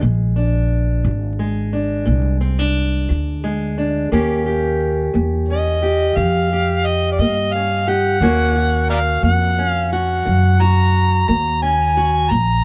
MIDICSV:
0, 0, Header, 1, 4, 480
1, 0, Start_track
1, 0, Tempo, 681818
1, 18, Time_signature, 12, 3, 24, 8
1, 8900, End_track
2, 0, Start_track
2, 0, Title_t, "Harmonica"
2, 0, Program_c, 0, 22
2, 3867, Note_on_c, 0, 75, 72
2, 4341, Note_on_c, 0, 77, 87
2, 4352, Note_off_c, 0, 75, 0
2, 4829, Note_on_c, 0, 75, 74
2, 4840, Note_off_c, 0, 77, 0
2, 5009, Note_off_c, 0, 75, 0
2, 5013, Note_on_c, 0, 74, 59
2, 5071, Note_on_c, 0, 75, 83
2, 5082, Note_off_c, 0, 74, 0
2, 5299, Note_on_c, 0, 77, 78
2, 5309, Note_off_c, 0, 75, 0
2, 5553, Note_on_c, 0, 78, 90
2, 5563, Note_off_c, 0, 77, 0
2, 6262, Note_off_c, 0, 78, 0
2, 6266, Note_on_c, 0, 70, 56
2, 6266, Note_on_c, 0, 74, 56
2, 6266, Note_on_c, 0, 77, 80
2, 6327, Note_off_c, 0, 74, 0
2, 6329, Note_off_c, 0, 70, 0
2, 6487, Note_off_c, 0, 77, 0
2, 6506, Note_on_c, 0, 78, 90
2, 6823, Note_off_c, 0, 78, 0
2, 6823, Note_on_c, 0, 77, 90
2, 6955, Note_off_c, 0, 77, 0
2, 6989, Note_on_c, 0, 78, 88
2, 7470, Note_on_c, 0, 82, 104
2, 7481, Note_off_c, 0, 78, 0
2, 7936, Note_off_c, 0, 82, 0
2, 7940, Note_on_c, 0, 82, 96
2, 8163, Note_off_c, 0, 82, 0
2, 8182, Note_on_c, 0, 80, 95
2, 8662, Note_on_c, 0, 82, 106
2, 8673, Note_off_c, 0, 80, 0
2, 8900, Note_off_c, 0, 82, 0
2, 8900, End_track
3, 0, Start_track
3, 0, Title_t, "Steel-string acoustic guitar"
3, 0, Program_c, 1, 25
3, 0, Note_on_c, 1, 56, 52
3, 8, Note_on_c, 1, 46, 74
3, 254, Note_on_c, 1, 62, 50
3, 445, Note_off_c, 1, 46, 0
3, 738, Note_on_c, 1, 53, 54
3, 971, Note_off_c, 1, 56, 0
3, 980, Note_on_c, 1, 56, 50
3, 1171, Note_off_c, 1, 53, 0
3, 1209, Note_off_c, 1, 62, 0
3, 1218, Note_on_c, 1, 62, 49
3, 1447, Note_on_c, 1, 46, 68
3, 1692, Note_off_c, 1, 62, 0
3, 1695, Note_on_c, 1, 60, 49
3, 1822, Note_off_c, 1, 60, 0
3, 1822, Note_on_c, 1, 62, 44
3, 1886, Note_off_c, 1, 46, 0
3, 2174, Note_on_c, 1, 53, 58
3, 2412, Note_off_c, 1, 56, 0
3, 2420, Note_on_c, 1, 56, 50
3, 2610, Note_off_c, 1, 53, 0
3, 2652, Note_off_c, 1, 62, 0
3, 2660, Note_on_c, 1, 62, 51
3, 2872, Note_off_c, 1, 62, 0
3, 2897, Note_off_c, 1, 56, 0
3, 2899, Note_on_c, 1, 51, 67
3, 2900, Note_on_c, 1, 58, 63
3, 2906, Note_on_c, 1, 61, 59
3, 2908, Note_on_c, 1, 67, 68
3, 3131, Note_off_c, 1, 67, 0
3, 3140, Note_on_c, 1, 67, 58
3, 3332, Note_off_c, 1, 51, 0
3, 3614, Note_off_c, 1, 58, 0
3, 3617, Note_on_c, 1, 58, 61
3, 3872, Note_off_c, 1, 61, 0
3, 3875, Note_on_c, 1, 61, 53
3, 4051, Note_off_c, 1, 58, 0
3, 4092, Note_off_c, 1, 67, 0
3, 4101, Note_on_c, 1, 67, 57
3, 4341, Note_on_c, 1, 51, 67
3, 4581, Note_off_c, 1, 67, 0
3, 4595, Note_on_c, 1, 67, 55
3, 4773, Note_off_c, 1, 51, 0
3, 5076, Note_on_c, 1, 58, 56
3, 5308, Note_off_c, 1, 61, 0
3, 5317, Note_on_c, 1, 61, 52
3, 5500, Note_off_c, 1, 58, 0
3, 5536, Note_off_c, 1, 67, 0
3, 5544, Note_on_c, 1, 67, 65
3, 5754, Note_off_c, 1, 67, 0
3, 5760, Note_off_c, 1, 61, 0
3, 5781, Note_on_c, 1, 51, 76
3, 5786, Note_on_c, 1, 58, 61
3, 5788, Note_on_c, 1, 61, 62
3, 5796, Note_on_c, 1, 66, 66
3, 6015, Note_off_c, 1, 66, 0
3, 6024, Note_on_c, 1, 66, 61
3, 6213, Note_off_c, 1, 51, 0
3, 6495, Note_off_c, 1, 58, 0
3, 6498, Note_on_c, 1, 58, 56
3, 6739, Note_off_c, 1, 61, 0
3, 6748, Note_on_c, 1, 61, 54
3, 6931, Note_off_c, 1, 58, 0
3, 6978, Note_off_c, 1, 66, 0
3, 6987, Note_on_c, 1, 66, 54
3, 7218, Note_on_c, 1, 51, 66
3, 7463, Note_off_c, 1, 66, 0
3, 7473, Note_on_c, 1, 66, 57
3, 7651, Note_off_c, 1, 51, 0
3, 7945, Note_on_c, 1, 58, 61
3, 8176, Note_off_c, 1, 61, 0
3, 8185, Note_on_c, 1, 61, 52
3, 8374, Note_off_c, 1, 58, 0
3, 8419, Note_off_c, 1, 66, 0
3, 8428, Note_on_c, 1, 66, 65
3, 8633, Note_off_c, 1, 61, 0
3, 8635, Note_off_c, 1, 66, 0
3, 8666, Note_on_c, 1, 46, 74
3, 8900, Note_off_c, 1, 46, 0
3, 8900, End_track
4, 0, Start_track
4, 0, Title_t, "Upright bass"
4, 0, Program_c, 2, 32
4, 15, Note_on_c, 2, 34, 82
4, 716, Note_off_c, 2, 34, 0
4, 735, Note_on_c, 2, 32, 83
4, 1436, Note_off_c, 2, 32, 0
4, 1456, Note_on_c, 2, 36, 82
4, 2157, Note_off_c, 2, 36, 0
4, 2181, Note_on_c, 2, 38, 79
4, 2879, Note_off_c, 2, 38, 0
4, 2900, Note_on_c, 2, 39, 79
4, 3599, Note_off_c, 2, 39, 0
4, 3625, Note_on_c, 2, 40, 75
4, 4321, Note_off_c, 2, 40, 0
4, 4340, Note_on_c, 2, 41, 76
4, 5039, Note_off_c, 2, 41, 0
4, 5060, Note_on_c, 2, 43, 81
4, 5759, Note_off_c, 2, 43, 0
4, 5776, Note_on_c, 2, 39, 78
4, 6477, Note_off_c, 2, 39, 0
4, 6497, Note_on_c, 2, 41, 78
4, 7197, Note_off_c, 2, 41, 0
4, 7226, Note_on_c, 2, 42, 81
4, 7921, Note_off_c, 2, 42, 0
4, 7947, Note_on_c, 2, 39, 85
4, 8642, Note_off_c, 2, 39, 0
4, 8669, Note_on_c, 2, 34, 84
4, 8900, Note_off_c, 2, 34, 0
4, 8900, End_track
0, 0, End_of_file